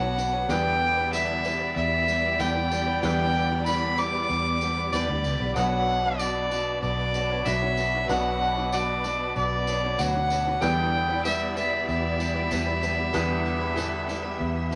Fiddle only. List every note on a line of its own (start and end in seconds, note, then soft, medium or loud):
0.00 0.52 F#5 loud
0.51 1.13 G5 loud
1.13 1.72 E5 loud
1.76 2.41 E5 loud
2.39 3.02 G5 loud
3.02 3.62 G5 loud
3.66 4.00 B5 loud
3.98 4.94 D6 loud
4.92 5.55 D5 medium
5.55 6.20 F#5 loud
6.19 6.82 D5 loud
6.82 7.47 D5 loud
7.45 8.09 E5 loud
8.10 8.74 F#5 loud
8.73 9.36 D5 medium
9.36 10.00 D5 loud
9.99 10.62 F#5 loud
10.61 11.25 G5 loud
11.25 11.54 E5 medium
11.56 11.86 E5 medium
11.88 14.75 E5 medium